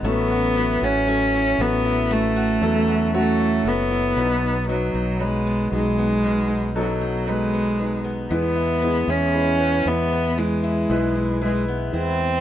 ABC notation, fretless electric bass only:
X:1
M:4/4
L:1/16
Q:1/4=58
K:E
V:1 name="Fretless electric bass" clef=bass
A,,,3 A,,,3 A,,,4 E,,4 F,,,2 | B,,,3 B,,,3 B,,,8- B,,,2 | E,,3 E,,3 E,,4 B,,,4 E,,2 |]